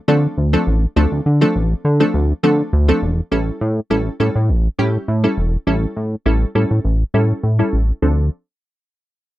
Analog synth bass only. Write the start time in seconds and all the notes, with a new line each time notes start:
0.08 D3
0.38 D2
0.67 A1
0.96 D2
1.12 D2
1.26 D3
1.55 A1
1.85 D3
2.14 D2
2.43 D3
2.73 D2
3.02 E1
3.32 A1
3.61 A2
3.90 A1
4.20 A2
4.36 A2
4.49 A1
4.79 A2
5.08 A2
5.38 E1
5.67 A1
5.96 A2
6.26 A1
6.55 A2
6.71 A2
6.85 A1
7.14 A2
7.43 A2
7.73 A1
8.02 D2